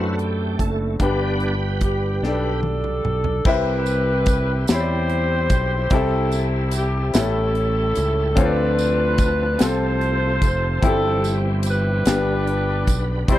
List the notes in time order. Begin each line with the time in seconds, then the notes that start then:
Already playing: F#2 D3 F#3 A3 C4 D4 E4 F#4 A4 B4 C5
0.13 F#4
0.19 G4, closed hi-hat
0.59 F#1 A4, kick, closed hi-hat
0.99 G1 G2 G3 B3 D4 G4 B4, kick, closed hi-hat
1.40 cross-stick, closed hi-hat
1.81 G4, kick, closed hi-hat
2.22 B1 D4 G4 A4, snare
2.27 D5
2.63 high tom
2.84 mid tom
3.05 B1, mid tom
3.24 floor tom
3.45 C2 C3 G3 C4 E4 G4 B4 E5, kick, crash
3.86 closed hi-hat, tambourine
4.26 kick, closed hi-hat, tambourine
4.67 E2 C4 E4 G4 C5, snare, closed hi-hat, tambourine
4.72 G4 C#5 B5
4.80 D5
5.09 closed hi-hat
5.50 B1, kick, closed hi-hat, tambourine
5.90 C2 C3 G3 B3 C4 E4 G4 A4, kick, closed hi-hat
5.95 C4 E5
6.32 snare, closed hi-hat, tambourine
6.71 G4, closed hi-hat, tambourine
7.13 A1 A2 G3 B3 C#4 E4 G4 A4 E5, snare, closed hi-hat, tambourine
7.19 C#4
7.55 closed hi-hat
7.95 C#2, closed hi-hat, tambourine
8.35 D2 D3 F3 C4 D4 F4 G#4 A4 C#5, kick, closed hi-hat
8.40 F4 B4
8.44 A4 D5
8.78 closed hi-hat, tambourine
9.18 kick, closed hi-hat, tambourine
9.58 C2 C3 F3 A3 C4 F4 A4, snare, closed hi-hat, tambourine
9.63 F4 A4 C5
10.01 closed hi-hat
10.42 F1, kick, closed hi-hat, tambourine
10.82 G1 G2 E3 G3 C4 E4 F#4 G4, kick, closed hi-hat
10.86 G4 A4
11.24 snare, closed hi-hat, tambourine
11.63 G4, closed hi-hat, tambourine
11.67 D4 B4
12.05 G1 G2 G3 A#3 B3 D4 G4 B4, snare, closed hi-hat, tambourine
12.13 B3
12.47 closed hi-hat
12.87 B1, kick, closed hi-hat, tambourine
13.28 C2 C3 G3 C4 E4 G4 C5 D5 B5, kick, closed hi-hat